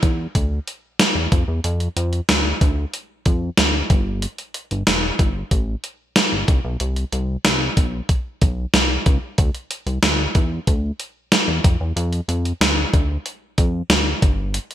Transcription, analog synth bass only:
0.03 E2
0.35 D2
1.15 E2
1.32 F2
1.48 E2
1.64 F2
1.97 F2
2.29 D2
2.61 D2
3.26 F2
3.59 D2
3.90 G1
4.71 G1
4.87 E1
5.19 G1
5.51 A1
6.32 G1
6.48 C2
6.65 B1
6.80 C2
7.12 C2
7.45 C2
7.77 B1
8.42 B1
8.74 C2
9.06 C#2
9.38 D2
9.87 C2
10.03 D2
10.35 E2
10.68 D2
11.48 E2
11.65 F2
11.80 E2
11.96 F2
12.28 F2
12.61 D2
12.94 D2
13.58 F2
13.90 D2
14.22 G1

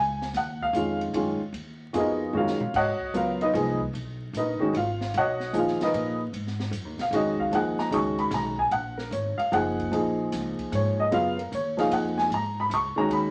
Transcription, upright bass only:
Already playing: C#2
0.34 D#2
0.73 F2
1.13 F#2
1.41 muted upright bass stroke
1.53 D#2
1.94 F2
2.33 F#2
2.59 muted upright bass stroke
2.74 G#2
3.00 muted upright bass stroke
3.14 C#2
3.54 C2
3.93 B1
4.33 A#1
4.59 muted upright bass stroke
4.73 G#1
5.14 B1
5.53 D#2
5.94 A#2
6.33 G#2
6.71 F#2
6.85 D#2
6.98 B1
7.11 F2
7.51 D#2
7.78 muted upright bass stroke
7.91 C#2
8.31 B1
8.71 A#1
9.11 G#1
9.38 muted upright bass stroke
9.52 F#1
9.91 A#1
10.33 C#2
10.59 muted upright bass stroke
10.72 G#2
11.12 F#2
11.52 D#2
11.91 F2
12.30 G#2
12.70 C#2
12.97 muted upright bass stroke
13.09 D#2

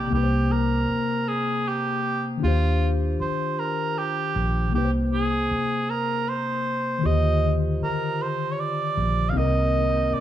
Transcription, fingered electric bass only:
0.12 C2
0.90 muted fingered electric bass stroke
2.43 D#2
3.20 muted fingered electric bass stroke
4.36 A#1
4.74 C2
5.51 muted fingered electric bass stroke
7.05 D#2
7.81 muted fingered electric bass stroke
8.97 A#1
9.36 C2
10.12 muted fingered electric bass stroke

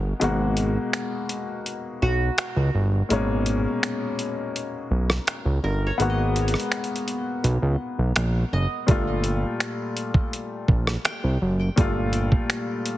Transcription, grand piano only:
Already playing: B2 G#3 A#3 F#4
0.20 B2 G#3 A#3
0.24 F#4
3.09 A#2 G#3 A#3 C#4
3.15 B2
5.98 G#3 A#3 B3
6.02 F#4
8.87 A#2 G3 A3
8.91 F4
11.76 A#2 G3 A3
11.80 F4

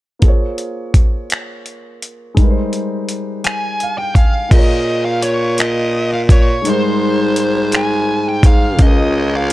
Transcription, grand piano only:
0.19 A#3 F4
0.24 G#4 C5
0.28 C#5
2.34 G#3 D#4
2.39 G3 A#4
2.44 B4
2.50 C5
3.83 F5
4.00 G5
4.18 G#5
4.49 A#3 F4
4.53 G#4 A#4
4.58 C#5
6.62 G#3 D#4
6.66 G3 A#4
6.71 C5
8.76 C#3 C#4
8.81 F4 A#4
8.85 D#5

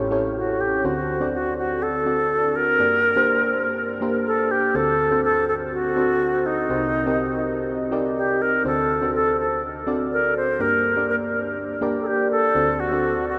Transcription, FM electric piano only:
Already playing: A1 A2 C#4 E4 G4 A4 C#5
0.11 C#4 E4 G4 A4 C#5
0.84 D2 D3 C4 D4 F#4 A4 C5
1.20 C4 D4 F#4 A4 D5
2.06 C4 D4 F#4 A4 D5
2.79 G2 A#3 D4 G4 A#4 D5
3.16 A#3 D4 G4 A#4 C5
4.01 A#3 D4 G4 A#4 C5
4.74 D2 D3 C4 D4 F#4 A4 C5
5.11 C4 D4 F#4 A4 C5
5.96 C4 D4 F#4 A4 C5
6.69 C2 C3 C4 D#4 G4 A#4 C5
7.06 C4 D#4 G4 A#4 D#5
7.91 C4 D#4 G4 A#4 D5
8.64 D2 D3 C4 D4 F#4 A4 C5
9.01 C4 D4 F#4 A4 C5
9.87 C4 D4 F#4 A4 D5
10.60 G2 A#3 D4 G4 A#4 D5
10.96 A#3 D4 G4 A#4 D5
11.81 A#3 D4 G4 A#4 D5
12.55 D2 D3 C4 D4 F#4 A4 C5
12.91 C4 D4 F#4 A4 D5

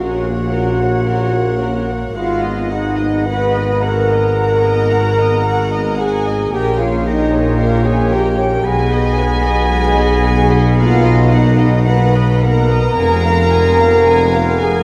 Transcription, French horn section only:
Already playing: F#4
2.15 F4
2.71 D#4
3.28 B4
3.84 A#4
6.01 G#4
6.53 G4
6.81 F4
7.08 D#4
7.60 F4
7.87 G#4
8.13 G4
8.68 G#4
10.80 F4
11.32 D#4
11.88 B4
12.42 A#4
14.61 G#4

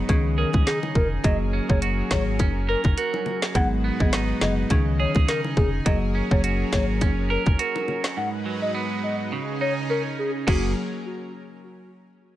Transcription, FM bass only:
0.09 C#2
0.54 C#2
0.95 F1
1.24 F#1
1.70 F#1
2.11 G#1
2.40 F#1
2.85 F#1
3.55 G#1
4.00 G#1
4.42 F#1
4.71 C#2
5.16 C#2
5.57 F1
5.86 F#1
6.31 F#1
6.73 G#1
7.01 F#1
7.47 F#1
10.48 F#1

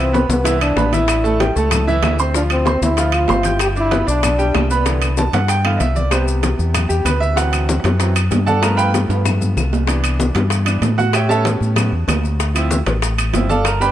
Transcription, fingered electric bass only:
Already playing: C2
0.29 C2
0.76 A1
1.56 C#2
2.02 D2
2.81 D2
3.29 G1
4.08 B1
4.55 C2
5.33 G2
5.80 C2
6.59 E2
6.90 E2
7.05 D2
7.84 F#2
8.31 G2
9.09 G2
9.56 C2
10.35 G2
10.81 A2
11.61 A2
11.92 E2
12.08 D2
12.86 A1
13.34 G1

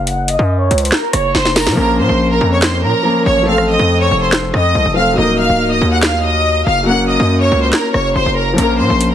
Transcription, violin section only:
0.07 F#5 F#6
0.29 D#5 D#6
0.60 C#5 C#6
0.81 C5 C6
0.92 A#4 A#5
1.13 C#5 C#6
1.35 C5 C6
1.56 A#4 A#5
1.78 A#4 A#5
1.99 C5 C6
2.31 A#4 A#5
2.52 C#5 C#6
2.62 C5 C6
2.83 A#4 A#5
3.26 C#5 C#6
3.48 F5 F6
3.69 D#5 D#6
4.00 C#5 C#6
4.21 C5 C6
4.54 D#5 D#6
4.96 F5 F6
5.18 D#5 D#6
5.39 F5 F6
5.71 D#5 D#6
5.92 F#5 F#6
6.03 F5 F6
6.24 D#5 D#6
6.67 F5 F6
6.88 F#5 F#6
7.10 D#5 D#6
7.41 C#5 C#6
7.62 C5 C6
7.73 A#4 A#5
7.94 C#5 C#6
8.16 C5 C6
8.36 A#4 A#5
8.59 A#4 A#5
8.80 C5 C6

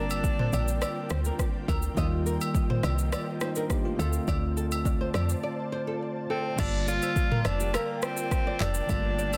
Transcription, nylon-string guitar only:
0.39 C5
0.53 D5
0.82 D5
1.11 C5
1.26 A#4
1.69 A#4
1.97 D#5
2.26 A#4
2.70 C5
2.84 D5
3.13 D5
3.41 C5
3.56 A#4
3.99 A4
4.28 D5
4.57 A4
5.01 C5
5.15 D5
5.43 D5
5.72 C5
5.87 A4
6.30 A4
6.88 D5
7.03 C5
7.32 A#4
7.60 G4
7.74 A#4
8.47 D5
8.61 D5
9.18 D5
9.34 C5

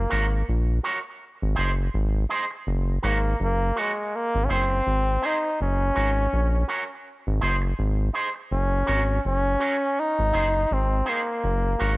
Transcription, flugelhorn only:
Already playing: A#3
3.05 A#3
3.43 A#3
3.79 G#3
4.16 A#3
4.45 C#4
4.52 C4
5.26 D#4
5.62 C#4
8.53 C#4
9.27 C#4
9.99 D#4
10.73 C4
11.09 A#3

